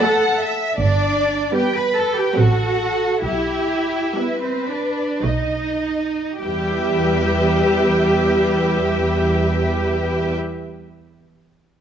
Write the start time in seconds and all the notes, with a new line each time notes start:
0.01 F#3 A3 A4 F#5 A5
0.40 E5
0.77 G1 D4 D5
1.55 G3 B3 G4 B4 G5
1.77 B4 B5
1.96 A4 A5
2.18 G4 G5
2.37 A1 F#3 C4 F#4 A4 F#5
3.25 B1 E4 G4 E5
4.17 G3 B3 B4
4.42 C4 C5
4.68 D4 D5
5.22 B1 F#3 A3 D#4 D#5
6.44 E2 G3 G4 B4 E5 G5